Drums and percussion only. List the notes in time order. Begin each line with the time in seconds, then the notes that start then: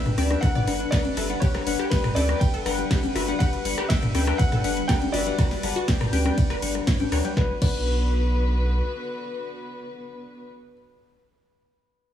0.06 cross-stick, closed hi-hat, mid tom
0.18 cross-stick, open hi-hat, high conga
0.31 cross-stick, closed hi-hat
0.43 kick, cross-stick, closed hi-hat, ride
0.55 closed hi-hat, mid tom
0.67 cross-stick, open hi-hat
0.80 closed hi-hat
0.92 kick, cross-stick, snare, closed hi-hat, ride
1.05 closed hi-hat, high conga
1.17 cross-stick, open hi-hat
1.30 closed hi-hat
1.42 kick, closed hi-hat, ride
1.54 cross-stick, snare, closed hi-hat
1.67 open hi-hat
1.79 cross-stick
1.92 kick, snare, closed hi-hat, ride
2.04 cross-stick, closed hi-hat, mid tom
2.16 open hi-hat, high conga
2.29 cross-stick, closed hi-hat
2.41 kick, closed hi-hat, ride
2.54 closed hi-hat
2.66 cross-stick, open hi-hat
2.79 closed hi-hat
2.91 kick, cross-stick, snare, closed hi-hat, ride
3.03 closed hi-hat, high conga
3.16 cross-stick, open hi-hat
3.28 closed hi-hat
3.40 kick, cross-stick, closed hi-hat, ride
3.53 closed hi-hat
3.65 open hi-hat
3.78 cross-stick
3.90 kick, snare, closed hi-hat, ride
4.03 cross-stick, closed hi-hat, mid tom
4.15 cross-stick, open hi-hat, high conga
4.27 cross-stick, closed hi-hat
4.39 kick, closed hi-hat, ride
4.52 cross-stick, closed hi-hat, mid tom
4.64 open hi-hat
4.77 closed hi-hat
4.89 kick, cross-stick, snare, closed hi-hat, ride
5.02 closed hi-hat, high conga
5.14 cross-stick, open hi-hat
5.26 closed hi-hat
5.39 kick, cross-stick, closed hi-hat, ride
5.51 snare, open hi-hat
5.63 cross-stick, open hi-hat
5.76 closed hi-hat
5.88 kick, snare, closed hi-hat, ride
6.01 cross-stick, closed hi-hat, mid tom
6.13 open hi-hat, high conga
6.26 cross-stick, high conga
6.38 kick, closed hi-hat, ride
6.50 cross-stick, closed hi-hat
6.62 open hi-hat
6.75 cross-stick, closed hi-hat
6.87 kick, snare, closed hi-hat, ride
7.00 closed hi-hat, high conga
7.12 cross-stick, open hi-hat
7.25 closed hi-hat
7.37 kick, snare
7.62 kick, crash